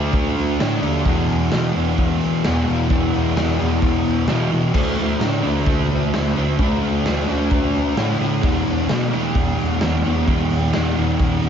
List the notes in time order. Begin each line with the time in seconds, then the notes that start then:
Already playing: D2 D3 A3 D4
0.13 D2, kick, open hi-hat
0.36 D2, open hi-hat
0.59 A2 D3 A3 D4, snare, open hi-hat
0.82 D#2 A3 D4, open hi-hat
1.05 E2 B2 E3, kick, open hi-hat
1.28 E2, open hi-hat
1.51 E2 B2 E3, snare, open hi-hat
1.64 snare
1.74 E2 B2 E3, open hi-hat
1.98 E2, kick, open hi-hat
2.21 open hi-hat
2.44 E2 B2 E3, snare, open hi-hat
2.67 E2 B2 E3, open hi-hat
2.88 E2 B2 E3, kick, open hi-hat
3.14 E2, open hi-hat
3.35 E2 B2 E3, snare, open hi-hat
3.48 snare
3.59 E2 B2 E3, open hi-hat
3.82 E2, kick, open hi-hat
4.06 E2, open hi-hat
4.27 E2 B2 E3, snare, open hi-hat
4.51 B2 E3, open hi-hat
4.73 D2 D3 A3 D4, kick, crash
4.98 D2, open hi-hat
5.20 A2 D3 A3 D4, snare, open hi-hat
5.43 D2 A3 D4, open hi-hat
5.66 D2, kick, open hi-hat
5.90 D2, open hi-hat
6.13 D2 D3 A3 D4, snare, open hi-hat
6.36 D2 A3 D4, open hi-hat
6.59 D2 D3 A3 D4, kick, open hi-hat
6.83 D2, open hi-hat
7.05 D2 D3 A3 D4, snare, open hi-hat
7.18 snare
7.28 D2 A3 D4, open hi-hat
7.51 D2, kick, open hi-hat
7.73 D2, open hi-hat
7.96 A2 D3 A3 D4, snare, open hi-hat
8.19 A2 A3 D4, open hi-hat
8.42 E2 B2 E3, kick, open hi-hat
8.66 E2, open hi-hat
8.88 E2 B2 E3, snare, open hi-hat
9.11 B2 E3, open hi-hat
9.35 E2, kick, open hi-hat
9.58 E2, open hi-hat
9.81 E2 B2 E3, snare, open hi-hat
10.04 E2 B2 E3, open hi-hat
10.26 E2 B2 E3, kick, open hi-hat
10.50 E2, open hi-hat
10.73 E2 B2 E3, snare, open hi-hat
10.96 E2 B2 E3, open hi-hat
11.19 E2, kick, open hi-hat
11.42 E2, open hi-hat